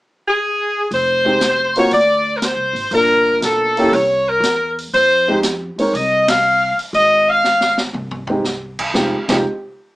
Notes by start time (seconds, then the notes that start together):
0.28 G#4
0.91 F1 C5, kick, open hi-hat
1.25 G#3 C4 D#4 G4, kick
1.41 snare, closed hi-hat
1.75 A#3 C4 F4 F#4 C#5, open hi-hat
1.91 D2 D5, kick, open hi-hat
2.37 A#4
2.42 C5, snare, closed hi-hat
2.57 C2
2.73 G#1, open hi-hat
2.91 G1 A#3 D4 F4 A#4, kick, open hi-hat
3.41 B1 A4, snare, closed hi-hat
3.77 A#3 C#4 E4 G4, open hi-hat
3.92 C2 C#5, kick, open hi-hat
4.29 A#4
4.40 E2, snare, closed hi-hat
4.79 open hi-hat
4.93 F2 C5, kick, open hi-hat
5.28 G#3 C4 D#4 G4
5.43 snare, closed hi-hat
5.76 G#3 C4 D#4 C#5, muted upright bass stroke, open hi-hat
5.81 A#4
5.93 C2 D#5, kick, open hi-hat
6.28 F5, snare, ride
6.78 muted upright bass stroke, open hi-hat
6.93 G#1 D#5, kick, open hi-hat
7.29 F5
7.44 snare
7.61 snare
7.78 snare
7.93 C2, floor tom
8.11 floor tom
8.27 G#3 C4 D#4 G4, floor tom
8.45 snare
8.79 kick, crash
8.94 F1 G#3 C4 D#4 F4 G4, kick, snare
9.28 F1 G#3 C4 D#4 F4 G4, kick, snare, crash